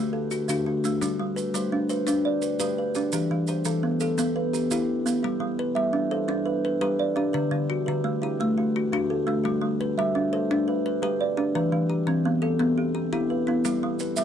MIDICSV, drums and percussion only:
0, 0, Header, 1, 2, 480
1, 0, Start_track
1, 0, Key_signature, 1, "major"
1, 0, Tempo, 350877
1, 1382, Time_signature, 12, 3, 24, 8
1, 19484, End_track
2, 0, Start_track
2, 0, Title_t, "Drums"
2, 423, Note_on_c, 9, 70, 48
2, 560, Note_off_c, 9, 70, 0
2, 668, Note_on_c, 9, 70, 65
2, 805, Note_off_c, 9, 70, 0
2, 1154, Note_on_c, 9, 70, 49
2, 1291, Note_off_c, 9, 70, 0
2, 1397, Note_on_c, 9, 70, 63
2, 1533, Note_off_c, 9, 70, 0
2, 1879, Note_on_c, 9, 70, 50
2, 2016, Note_off_c, 9, 70, 0
2, 2115, Note_on_c, 9, 70, 68
2, 2252, Note_off_c, 9, 70, 0
2, 2594, Note_on_c, 9, 70, 49
2, 2731, Note_off_c, 9, 70, 0
2, 2835, Note_on_c, 9, 70, 68
2, 2972, Note_off_c, 9, 70, 0
2, 3310, Note_on_c, 9, 70, 52
2, 3447, Note_off_c, 9, 70, 0
2, 3552, Note_on_c, 9, 70, 71
2, 3689, Note_off_c, 9, 70, 0
2, 4032, Note_on_c, 9, 70, 55
2, 4169, Note_off_c, 9, 70, 0
2, 4272, Note_on_c, 9, 70, 74
2, 4408, Note_off_c, 9, 70, 0
2, 4750, Note_on_c, 9, 70, 50
2, 4887, Note_off_c, 9, 70, 0
2, 4991, Note_on_c, 9, 70, 72
2, 5128, Note_off_c, 9, 70, 0
2, 5476, Note_on_c, 9, 70, 54
2, 5613, Note_off_c, 9, 70, 0
2, 5721, Note_on_c, 9, 70, 71
2, 5857, Note_off_c, 9, 70, 0
2, 6213, Note_on_c, 9, 70, 58
2, 6350, Note_off_c, 9, 70, 0
2, 6443, Note_on_c, 9, 70, 76
2, 6580, Note_off_c, 9, 70, 0
2, 6927, Note_on_c, 9, 70, 60
2, 7064, Note_off_c, 9, 70, 0
2, 18669, Note_on_c, 9, 70, 81
2, 18806, Note_off_c, 9, 70, 0
2, 19144, Note_on_c, 9, 70, 57
2, 19281, Note_off_c, 9, 70, 0
2, 19377, Note_on_c, 9, 70, 73
2, 19484, Note_off_c, 9, 70, 0
2, 19484, End_track
0, 0, End_of_file